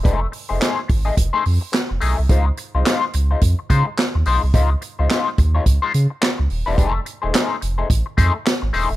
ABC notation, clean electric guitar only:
X:1
M:4/4
L:1/16
Q:"Swing 16ths" 1/4=107
K:Fm
V:1 name="Clean electric guitar"
[=A,E^Gc] z2 [A,EGc] [A,EGc] z2 [A,EGe] z [A,EGc] z4 [A,EGe] z | [A,EFc] z2 [A,EFc] [A,EFc] z2 [A,EFc] z2 [A,EFc] z3 [A,EFc] z | [A,EFc] z2 [A,EFc] [A,EFc] z2 [A,EFd] z [A,EFc] z4 z [A,EFc] | [=A,E^Gc] z2 [A,EGc] [A,EGc] z2 [A,EGc] z2 [A,EGc] z3 [A,EGc] z |]